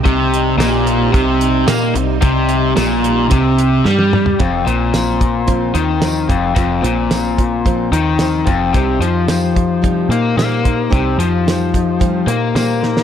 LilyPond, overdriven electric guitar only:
\new Staff \with { instrumentName = "Overdriven electric guitar" } { \clef bass \time 4/4 \key c \minor \tempo 4 = 110 c4 bes,4 c4 bes8 c8 | c4 bes,4 c4 g4 | \key f \dorian f,8 bes,2 ees4 f,8 | f,8 bes,2 ees4 f,8 |
c8 f2 bes8 bes4 | c8 f2 bes8 bes4 | }